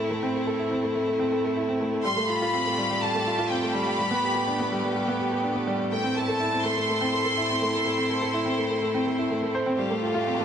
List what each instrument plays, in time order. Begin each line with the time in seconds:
Already playing: string quartet A2 A3 C4 E4, grand piano C4 E4 A4
0.00 grand piano A3
0.11 grand piano A3
0.23 grand piano C4
0.35 grand piano A4
0.47 grand piano A4
0.59 grand piano E4
0.71 grand piano C4
0.83 grand piano A3
0.95 grand piano A3
1.08 grand piano A3
1.19 grand piano C4
1.32 grand piano A4
1.44 grand piano A4
1.57 grand piano E4
1.69 grand piano C4
1.81 grand piano A3
1.93 grand piano A3
2.04 string quartet A2 F4 G4, grand piano G3, violin section C6
2.17 grand piano A3
2.28 grand piano F4, violin section B5
2.42 grand piano F4
2.54 grand piano C4
2.66 grand piano A3
2.78 grand piano G3
2.91 grand piano G3
3.01 grand piano G3, violin section A5
3.15 grand piano A3
3.27 grand piano F4
3.38 grand piano F4
3.50 grand piano C4, violin section G5
3.63 grand piano A3
3.74 grand piano G3, violin section B5
3.87 grand piano G3
3.98 string quartet A2 B3, grand piano G3
4.11 grand piano B3
4.23 grand piano G4
4.35 grand piano G4
4.47 grand piano D4
4.59 grand piano B3
4.71 grand piano G3
4.83 grand piano G3
4.96 grand piano G3
5.08 grand piano B3
5.19 grand piano G4
5.31 grand piano G4
5.43 grand piano D4
5.55 grand piano B3
5.67 grand piano G3
5.79 grand piano G3
5.91 grand piano A3, string quartet C4 E4, violin section G5
6.04 grand piano C4
6.16 grand piano A4, violin section A5
6.28 grand piano A4
6.40 grand piano E4
6.52 grand piano C4
6.64 grand piano A3, violin section C6
6.77 grand piano A3
6.89 grand piano A3
7.01 grand piano C4
7.13 grand piano A4
7.25 grand piano A4
7.37 grand piano E4
7.49 grand piano C4
7.62 grand piano A3
7.74 grand piano A3
7.85 grand piano A3
7.98 grand piano C4
8.10 grand piano A4
8.22 grand piano A4
8.34 grand piano E4
8.46 grand piano C4
8.58 grand piano A3
8.70 grand piano A3
8.82 grand piano A3
8.94 grand piano C4
9.07 grand piano A3
9.19 grand piano E4
9.31 grand piano A3
9.42 grand piano A3
9.55 grand piano C5
9.66 grand piano C4
9.78 string quartet A2 A3 F4 G4, grand piano G3, riser
9.90 grand piano A3
10.02 grand piano F4
10.14 grand piano F4
10.27 grand piano C4
10.39 grand piano A3